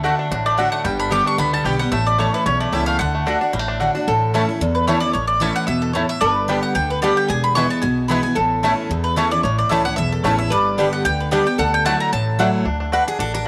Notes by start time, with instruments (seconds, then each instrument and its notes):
Already playing: upright bass D2
0.03 steel-string acoustic guitar D3 A3 D4 F#4, mandolin A3 F#4 D5 F#5, five-string banjo A3
0.19 five-string banjo D4
0.31 upright bass A1, steel-string acoustic guitar A2, five-string banjo D4
0.46 five-string banjo A3, mandolin D5
0.57 steel-string acoustic guitar D3 A3 D4 F#4, mandolin A3 F#4 D5 E5 F#5, five-string banjo D4
0.72 five-string banjo A3, mandolin F#5
0.84 upright bass G1, steel-string acoustic guitar G2, five-string banjo G3, mandolin G5
1.00 five-string banjo D4, mandolin B5
1.10 steel-string acoustic guitar D3 G3 B3 G4, five-string banjo G3, mandolin B3 G4 D5 G5 D6
1.26 five-string banjo D4, mandolin C#6
1.38 upright bass C#2, steel-string acoustic guitar D3, five-string banjo B3, mandolin B5
1.53 five-string banjo G3, mandolin A5
1.64 upright bass B1, steel-string acoustic guitar D3 G3 B3 G4, mandolin B3 G4 D5 G5, five-string banjo G4
1.79 five-string banjo G3, steel-string acoustic guitar B3 G4, mandolin F#5
1.92 upright bass A1, steel-string acoustic guitar A2, five-string banjo A3, mandolin E5
2.07 mandolin D5
2.18 steel-string acoustic guitar E3 A3 C#4 E4, mandolin A3 E4 C#5 A5, five-string banjo A3
2.34 five-string banjo E4, mandolin B4
2.45 upright bass B1, steel-string acoustic guitar E2, five-string banjo C#4, mandolin C#5
2.60 five-string banjo A3, mandolin D5
2.72 upright bass C#2, steel-string acoustic guitar E3 A3 C#4 E4, mandolin A3 E4 C#5 E5 A5, five-string banjo G4
2.86 five-string banjo A3, mandolin F5
2.99 upright bass D2, five-string banjo D3, steel-string acoustic guitar D3, mandolin F#5
3.15 five-string banjo A3
3.26 steel-string acoustic guitar D3 A3 D4 F#4, mandolin A3 F#4 D5 F#5, five-string banjo D4
3.41 five-string banjo D4, steel-string acoustic guitar D4 F#4
3.53 upright bass A1, steel-string acoustic guitar A2, five-string banjo G3
3.59 five-string banjo A3
3.68 five-string banjo D4
3.79 steel-string acoustic guitar D3 A3 D4 F#4, mandolin A3 F#4 D5 F#5, five-string banjo D4
3.95 five-string banjo D4, steel-string acoustic guitar D4 F#4
4.07 upright bass A1, steel-string acoustic guitar A2, resonator guitar played with a steel bar A4
4.34 steel-string acoustic guitar E3 A3 C#4 E4, mandolin A3 E4 C#5 A5, five-string banjo A3 C#4 E4
4.49 steel-string acoustic guitar C#4 E4
4.61 upright bass E2, steel-string acoustic guitar E2
4.75 mandolin B4
4.87 steel-string acoustic guitar E3 A3 C#4 E4, mandolin A3 E4 C#5 A5, five-string banjo A3 C#4 E4
5.00 steel-string acoustic guitar C#4 E4, mandolin D5
5.13 upright bass A1, steel-string acoustic guitar A2, mandolin C#5
5.27 mandolin D5
5.40 steel-string acoustic guitar E3 A3 C#4 E4, mandolin A3 E4 C#5 E5 A5, five-string banjo A3 C#4 E4
5.56 mandolin F#5
5.67 upright bass E2, steel-string acoustic guitar B2, mandolin E5
5.82 mandolin A4
5.93 steel-string acoustic guitar A2, mandolin A3 E4 C#5 A5, five-string banjo A3 C#4 E4
6.09 mandolin E5
6.21 upright bass G1, steel-string acoustic guitar G2, resonator guitar played with a steel bar B4, mandolin D5
6.48 steel-string acoustic guitar D3 G3 B3 G4, five-string banjo G3 B3 D4, mandolin B3 G4 D5 G5
6.63 mandolin F#5
6.75 upright bass D2, steel-string acoustic guitar D3, mandolin G5
6.90 mandolin B4
7.02 steel-string acoustic guitar D3 G3 B3 G4, five-string banjo G3 B3 D4, mandolin B3 G4 D5 G5
7.17 mandolin G5
7.28 upright bass E1, steel-string acoustic guitar E2, resonator guitar played with a steel bar G#4, mandolin G#5
7.44 mandolin B5
7.55 steel-string acoustic guitar E3 G#3 B3 E4, five-string banjo G#3 B3 E4, mandolin B3 E4 B4 G#5 C#6
7.70 mandolin A5
7.82 upright bass B1, steel-string acoustic guitar B2, mandolin G#5
8.08 steel-string acoustic guitar E3 G#3 B3 E4, five-string banjo G#3 B3 E4, mandolin B3 E4 B4 G#5 B5
8.23 steel-string acoustic guitar B3 E4, mandolin G#5
8.35 upright bass A1, steel-string acoustic guitar A2, resonator guitar played with a steel bar A4
8.63 steel-string acoustic guitar E3 A3 C#4 E4, mandolin A3 E4 C#5 A5, five-string banjo A3 C#4 E4
8.90 upright bass E2, steel-string acoustic guitar E2
9.04 mandolin B4
9.16 steel-string acoustic guitar E3 A3 C#4 E4, mandolin A3 E4 C#5 A5, five-string banjo A3 C#4 E4
9.31 steel-string acoustic guitar C#4 E4, mandolin D5
9.43 upright bass A1, steel-string acoustic guitar A2, mandolin C#5
9.58 mandolin D5
9.69 upright bass C#2, steel-string acoustic guitar E3 A3 C#4 E4, mandolin A3 E4 C#5 E5 A5, five-string banjo A3 C#4 E4
9.85 steel-string acoustic guitar C#4 E4, mandolin F#5
9.96 upright bass B1, steel-string acoustic guitar E2, mandolin E5
10.12 mandolin A4
10.24 upright bass A1, steel-string acoustic guitar E3 A3 C#4 E4, mandolin A3 E4 C#5 A5, five-string banjo A3 C#4 E4
10.39 steel-string acoustic guitar C#4 E4, mandolin E5
10.50 upright bass G1, steel-string acoustic guitar G2, resonator guitar played with a steel bar B4, mandolin D5
10.78 steel-string acoustic guitar D3 G3 B3 G4, five-string banjo G3 B3 D4, mandolin B3 G4 D5 G5
10.93 mandolin F#5
11.05 upright bass D2, steel-string acoustic guitar D3, mandolin G5
11.20 mandolin B4
11.31 steel-string acoustic guitar D3 G3 B3 G4, five-string banjo G3 B3 D4, mandolin B3 G4 D5 G5
11.46 steel-string acoustic guitar B3 G4, mandolin G5
11.58 upright bass D2, steel-string acoustic guitar D3, resonator guitar played with a steel bar A4, mandolin F#5
11.74 mandolin G5
11.85 steel-string acoustic guitar F#3 A3 E4 F#4, mandolin A3 E4 D5 F#5 A5, five-string banjo A3 D4
12.00 mandolin A#5
12.12 upright bass A1, steel-string acoustic guitar A2, mandolin A5
12.39 steel-string acoustic guitar F#3 A3 E4 F#4, mandolin A3 E4 D5 F#5, five-string banjo A3 D4
12.65 upright bass D2, five-string banjo D4
12.80 five-string banjo D4
12.92 mandolin A3 F#4 D5 F#5, five-string banjo D4, steel-string acoustic guitar B4
13.07 five-string banjo D4, steel-string acoustic guitar G#4
13.19 upright bass A1, five-string banjo D4, steel-string acoustic guitar A4
13.34 five-string banjo D4, steel-string acoustic guitar A#4